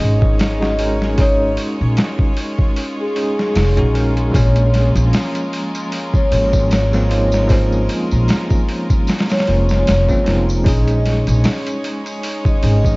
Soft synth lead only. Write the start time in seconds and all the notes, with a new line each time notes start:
Already playing: D#5
0.41 D#5
1.20 C#5
3.00 G#4
4.34 C#5
6.15 C#5
6.73 C#5
7.50 C5
9.31 C#5
10.67 D#5
12.47 D#5